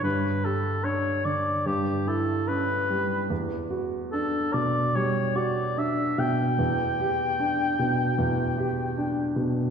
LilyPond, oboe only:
\new Staff \with { instrumentName = "Oboe" } { \time 4/4 \key g \lydian \tempo 4 = 74 b'8 a'8 cis''8 d''8 g'8 a'8 b'4 | r4 a'8 d''8 cis''8 d''8 e''8 g''8~ | g''2.~ g''8 r8 | }